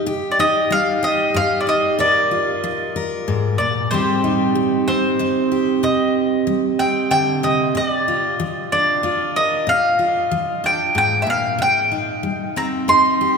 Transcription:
0.06 steel-string acoustic guitar C3 G4
0.32 mandolin D5
0.39 steel-string acoustic guitar D#4, mandolin D#5
0.70 steel-string acoustic guitar G3, mandolin F5
1.03 steel-string acoustic guitar G4, mandolin D#5
1.34 steel-string acoustic guitar G2, mandolin F5
1.60 mandolin D5
1.67 steel-string acoustic guitar D#4, mandolin D#5
1.99 steel-string acoustic guitar A#2 A#4, mandolin D5
2.31 steel-string acoustic guitar F4
2.64 steel-string acoustic guitar F3
2.96 steel-string acoustic guitar A#4
3.28 steel-string acoustic guitar G#2
3.58 steel-string acoustic guitar A#2, mandolin D5
3.91 steel-string acoustic guitar C3 G3 C4 D#4 G4, mandolin C5
4.24 steel-string acoustic guitar D#4
4.55 steel-string acoustic guitar G3
4.88 steel-string acoustic guitar C4, mandolin C5
5.19 steel-string acoustic guitar G2 D#4
5.52 steel-string acoustic guitar G4
5.83 steel-string acoustic guitar C3, mandolin D#5
6.47 steel-string acoustic guitar G3
6.79 steel-string acoustic guitar C4, mandolin G5
7.11 steel-string acoustic guitar D3, mandolin G5
7.43 steel-string acoustic guitar C3, mandolin D#5
7.75 steel-string acoustic guitar A#2, mandolin D#5
7.88 mandolin D5
8.08 steel-string acoustic guitar F4
8.40 steel-string acoustic guitar F3
8.72 steel-string acoustic guitar D4, mandolin D5
9.03 steel-string acoustic guitar A#2 F4
9.36 steel-string acoustic guitar A#4, mandolin D#5
9.67 steel-string acoustic guitar A#2, mandolin F5
9.99 steel-string acoustic guitar F4
10.31 steel-string acoustic guitar F3
10.64 steel-string acoustic guitar D4, mandolin G5
10.95 steel-string acoustic guitar G#2, mandolin G5
11.22 mandolin E5
11.27 steel-string acoustic guitar A#2, mandolin F5
11.58 steel-string acoustic guitar C3, mandolin G5
11.92 steel-string acoustic guitar D#4
12.23 steel-string acoustic guitar G3
12.56 steel-string acoustic guitar C4, mandolin A#5
12.88 steel-string acoustic guitar G2 D#4, mandolin C6
13.21 steel-string acoustic guitar G4

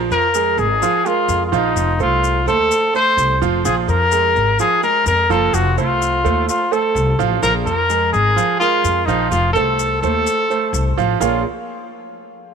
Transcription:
Already playing: grand piano F3 F4 F5
0.11 upright bass F2, trumpet A#4, maracas
0.34 grand piano G#3 G#4 A#4, maracas
0.57 upright bass G#1, trumpet G#4, maracas
0.82 grand piano F3 F4 F5, maracas
1.06 grand piano G#3 G#4 A#4, trumpet F4, maracas
1.28 upright bass F2, maracas
1.46 trumpet F4
1.52 upright bass A#1, grand piano F3 F4 F5, trumpet D#4, maracas
1.76 upright bass F1, maracas
1.99 upright bass C2, grand piano A3 A4 C5, trumpet F4, maracas
2.24 maracas
2.46 upright bass D#2, grand piano A3 A4 C5, trumpet A4, maracas
2.71 maracas
2.94 grand piano A3 A4 C5, trumpet C5, maracas
3.17 upright bass C2, maracas
3.41 upright bass F1, grand piano F3 F4 F5, maracas
3.65 upright bass A#1, grand piano F3 F4 F5, trumpet G#4, maracas
3.88 upright bass F2, trumpet A#4, maracas
4.12 grand piano G#3 G#4 A#4, maracas
4.36 upright bass G#1, maracas
4.59 grand piano F3 F4 F5, trumpet G#4, maracas
4.83 grand piano G#3 G#4 A#4, trumpet A#4, maracas
5.06 upright bass F2, trumpet A#4, maracas
5.29 upright bass F#1, grand piano F3 F4 F5, trumpet A4, maracas
5.53 upright bass F1, trumpet F#4, maracas
5.77 upright bass C2, grand piano A3 A4 C5, trumpet F4, maracas
6.02 maracas
6.24 upright bass D#2, grand piano A3 A4 C5, maracas
6.49 trumpet F4, maracas
6.72 grand piano A3 A4 C5, trumpet A4, maracas
6.95 upright bass C2, maracas
7.19 upright bass A1, grand piano F3 F4 F5, maracas
7.42 upright bass A#1, grand piano F3 F4 F5, trumpet A#4, maracas
7.66 upright bass F2, trumpet A#4, maracas
7.90 grand piano G#3 G#4 A#4, maracas
8.13 upright bass G#1, trumpet G#4, maracas
8.36 grand piano F3 F4 F5, maracas
8.60 grand piano G#3 G#4 A#4, trumpet F4, maracas
8.84 upright bass F2, maracas
9.06 upright bass A#1, grand piano F3 F4 F5, trumpet D#4, maracas
9.31 upright bass F1, trumpet F4, maracas
9.53 upright bass C2, grand piano A3 A4 C5, trumpet A4, maracas
9.79 maracas
10.02 upright bass D#2, grand piano A3 A4 C5, trumpet A4, maracas
10.27 maracas
10.50 grand piano A3 A4 C5, maracas
10.73 upright bass C2, maracas
10.97 upright bass A1, grand piano F3 F4 F5, maracas
11.20 upright bass A#1, grand piano A#3 F4 G#4 A#4 C#5 F5, trumpet F4, maracas

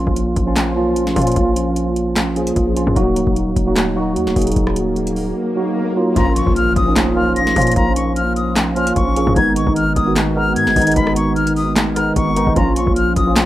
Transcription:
Already playing: tine electric piano F3 A#3 C#4 F4
0.07 808-style bass A#1, kick
0.16 closed hi-hat
0.36 808-style bass A#1, kick, closed hi-hat
0.46 tine electric piano F3 A#3 C#4 F4
0.56 snare, clap, closed hi-hat
0.76 808-style bass B1, tine electric piano F3 A#3 C#4 F4
0.96 808-style bass A#1, closed hi-hat
1.07 snare
1.15 808-style bass A#2, tine electric piano F3 A#3 C#4 F4, kick, closed hi-hat, open hi-hat
1.22 closed hi-hat
1.27 closed hi-hat
1.32 closed hi-hat
1.36 808-style bass A#1, kick, closed hi-hat
1.56 closed hi-hat
1.76 closed hi-hat
1.96 closed hi-hat
2.16 snare, clap, closed hi-hat
2.36 tine electric piano F3 A#3 C#4 G#4, closed hi-hat
2.47 closed hi-hat
2.56 808-style bass A#1, kick, closed hi-hat
2.76 tine electric piano F3 A#3 C#4 F4, closed hi-hat
2.87 808-style bass F2, kick
2.95 808-style bass D#1, tine electric piano F#3 A#3 D#4 F#4, kick, closed hi-hat
3.16 closed hi-hat
3.27 808-style bass D#1, kick
3.36 closed hi-hat
3.56 808-style bass D#1, kick, closed hi-hat
3.66 tine electric piano F#3 A#3 D#4 F#4
3.76 snare, clap, closed hi-hat
3.96 tine electric piano F#3 A#3 D#4 F#4
4.16 808-style bass D#2, closed hi-hat
4.27 808-style bass D#1, snare
4.36 808-style bass D#1, tine electric piano F#3 A#3 D#4 G#4, kick, closed hi-hat, open hi-hat
4.42 closed hi-hat
4.47 closed hi-hat
4.52 closed hi-hat
4.56 808-style bass D#1, kick, closed hi-hat, swell
4.67 cross-stick
4.76 closed hi-hat
4.96 closed hi-hat
5.07 closed hi-hat
5.16 open hi-hat
5.56 tine electric piano F#3 A#3 D#4 F#4
5.96 tine electric piano F#3 A#3 D#4 F4
6.15 808-style bass A#1, tine electric piano F3 A#3 C#4 F4, flute A#5, kick, closed hi-hat, impact
6.36 flute C#6, closed hi-hat
6.47 808-style bass A#1, kick
6.56 flute F6, closed hi-hat
6.76 808-style bass A#1, flute D#6, kick, closed hi-hat
6.86 tine electric piano F3 A#3 C#4 D#4
6.96 snare, clap, closed hi-hat
7.15 808-style bass B1, tine electric piano F3 A#3 C#4 F4, flute F6
7.36 808-style bass A#1, flute A#6, closed hi-hat
7.47 snare
7.56 808-style bass A#2, tine electric piano F3 A#3 C#4 F4, kick, closed hi-hat, open hi-hat
7.62 closed hi-hat
7.67 closed hi-hat
7.72 closed hi-hat
7.76 808-style bass A#1, flute A#5, kick, closed hi-hat
7.96 flute C#6, closed hi-hat
8.16 flute F6, closed hi-hat
8.36 flute D#6, closed hi-hat
8.56 snare, clap, closed hi-hat
8.76 tine electric piano F3 A#3 C#4 F4, flute F6, closed hi-hat
8.87 closed hi-hat
8.96 808-style bass A#1, flute C#6, kick, closed hi-hat
9.16 tine electric piano F3 A#3 C#4 G#4, closed hi-hat
9.27 808-style bass F2, kick
9.36 808-style bass G#1, tine electric piano D#3 G#3 B3 D#4, flute G#6, kick, closed hi-hat
9.56 flute C#6, closed hi-hat
9.67 808-style bass G#1, kick
9.76 flute F6, closed hi-hat
9.96 808-style bass G#1, flute D#6, kick, closed hi-hat
10.06 tine electric piano D#3 G#3 B3 F#4
10.16 snare, clap, closed hi-hat
10.36 tine electric piano D#3 G#3 B3 D#4, flute F6
10.56 808-style bass G#2, flute G#6, closed hi-hat
10.67 808-style bass G#1, snare
10.76 808-style bass G#1, tine electric piano D#3 G#3 B3 D#4, kick, closed hi-hat, open hi-hat
10.82 closed hi-hat
10.87 closed hi-hat
10.92 closed hi-hat
10.96 808-style bass G#1, flute B5, kick, closed hi-hat
11.07 cross-stick
11.16 flute C#6, closed hi-hat
11.36 flute F6, closed hi-hat
11.47 closed hi-hat
11.56 flute D#6, open hi-hat
11.76 snare, clap, closed hi-hat
11.96 tine electric piano D#3 G#3 B3 D#4, flute F6, cross-stick, closed hi-hat
12.16 808-style bass G#1, flute C#6, kick, closed hi-hat
12.36 tine electric piano D#3 G#3 B3 D#4, closed hi-hat
12.47 808-style bass G#1, kick
12.56 808-style bass A#1, tine electric piano F3 A#3 C#4 F4, flute A#5, kick, closed hi-hat
12.76 flute C#6, closed hi-hat
12.87 808-style bass A#1, kick
12.96 flute F6, closed hi-hat
13.16 808-style bass A#1, flute D#6, kick, closed hi-hat
13.26 tine electric piano F3 A#3 C#4 F4
13.36 snare, clap, closed hi-hat

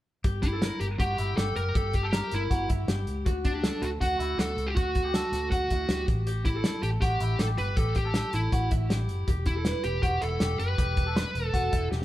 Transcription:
0.24 fingered electric bass G1, clean electric guitar G4, kick, closed hi-hat
0.43 lead electric guitar E4, kick, closed hi-hat
0.53 clean electric guitar A4
0.62 clean electric guitar A#4, snare, closed hi-hat
0.80 fingered electric bass G1, lead electric guitar G4, closed hi-hat
0.99 fingered electric bass G1, clean electric guitar F#4, lead electric guitar G4, kick, closed hi-hat
1.18 fingered electric bass G1, clean electric guitar E4, closed hi-hat
1.37 fingered electric bass G1, clean electric guitar G4, lead electric guitar A4, snare, closed hi-hat
1.56 fingered electric bass F#1, lead electric guitar A#4, closed hi-hat
1.75 fingered electric bass G1, clean electric guitar G4, lead electric guitar A4, kick, closed hi-hat
1.93 lead electric guitar G4, kick, closed hi-hat
2.03 clean electric guitar A4
2.13 clean electric guitar A#4, snare, closed hi-hat
2.31 fingered electric bass G1, lead electric guitar E4, snare, closed hi-hat
2.50 fingered electric bass G1, clean electric guitar F#4, kick, closed hi-hat
2.69 fingered electric bass G1, clean electric guitar E4, kick, closed hi-hat
2.88 fingered electric bass G1, clean electric guitar G4, snare, closed hi-hat
3.07 fingered electric bass C#2, closed hi-hat
3.26 fingered electric bass D2, clean electric guitar F#4, kick, closed hi-hat
3.45 lead electric guitar D4, kick, closed hi-hat
3.54 clean electric guitar G4
3.63 clean electric guitar A4, snare, closed hi-hat
3.82 fingered electric bass D2, lead electric guitar F#4, closed hi-hat
4.01 fingered electric bass D2, clean electric guitar F#4, lead electric guitar F#4, kick, closed hi-hat
4.19 fingered electric bass D2, clean electric guitar E4, closed hi-hat
4.38 fingered electric bass D2, clean electric guitar F#4, lead electric guitar A4, snare, closed hi-hat
4.57 fingered electric bass C#2, closed hi-hat
4.67 lead electric guitar G4
4.75 fingered electric bass D2, lead electric guitar F#4, clean electric guitar F#4, kick, closed hi-hat
4.95 kick, closed hi-hat
5.05 clean electric guitar G4
5.14 clean electric guitar A4, snare, closed hi-hat
5.32 fingered electric bass D2, snare, closed hi-hat
5.51 fingered electric bass D2, lead electric guitar F#4, clean electric guitar F#4, kick, closed hi-hat
5.70 fingered electric bass D2, clean electric guitar E4, kick, closed hi-hat
5.89 fingered electric bass D2, clean electric guitar G4, snare, closed hi-hat
6.08 fingered electric bass A1, kick, closed hi-hat
6.27 clean electric guitar G4, closed hi-hat
6.45 lead electric guitar E4, kick, closed hi-hat
6.55 clean electric guitar A4
6.64 clean electric guitar A4, snare, closed hi-hat
6.83 fingered electric bass A1, lead electric guitar G4, closed hi-hat
7.01 fingered electric bass A1, clean electric guitar F#4, lead electric guitar G4, kick, closed hi-hat
7.20 fingered electric bass A1, clean electric guitar E4, closed hi-hat
7.39 fingered electric bass A1, clean electric guitar G4, lead electric guitar A4, snare, closed hi-hat
7.58 fingered electric bass G1, lead electric guitar B4, closed hi-hat
7.77 fingered electric bass A1, clean electric guitar G4, lead electric guitar A4, kick, closed hi-hat
7.95 lead electric guitar G4, kick, closed hi-hat
8.05 clean electric guitar A4
8.14 clean electric guitar A4, snare, closed hi-hat
8.33 fingered electric bass A1, lead electric guitar E4, closed hi-hat
8.52 fingered electric bass A1, clean electric guitar F#4, kick, closed hi-hat
8.71 fingered electric bass A1, clean electric guitar E4, kick, closed hi-hat
8.90 fingered electric bass A1, clean electric guitar G4, snare, closed hi-hat
9.09 fingered electric bass F#1, closed hi-hat
9.27 fingered electric bass E1, clean electric guitar G4, kick, closed hi-hat
9.46 lead electric guitar E4, kick, closed hi-hat
9.56 clean electric guitar A4
9.65 clean electric guitar B4, snare, closed hi-hat
9.84 fingered electric bass E1, lead electric guitar G4, closed hi-hat
10.03 fingered electric bass E1, clean electric guitar F#4, lead electric guitar G4, kick, closed hi-hat
10.22 fingered electric bass E1, clean electric guitar E4, lead electric guitar A4, closed hi-hat
10.40 fingered electric bass E1, clean electric guitar G4, snare, closed hi-hat
10.59 fingered electric bass F#1, lead electric guitar B4, closed hi-hat
10.78 fingered electric bass E1, clean electric guitar G4, kick, closed hi-hat
10.97 kick, closed hi-hat
11.07 clean electric guitar A4
11.16 clean electric guitar B4, snare, closed hi-hat
11.35 fingered electric bass E1, closed hi-hat
11.46 lead electric guitar A4
11.53 fingered electric bass E1, clean electric guitar F#4, kick, closed hi-hat
11.72 fingered electric bass E1, clean electric guitar E4, kick, closed hi-hat
11.91 fingered electric bass E1, clean electric guitar G4, snare

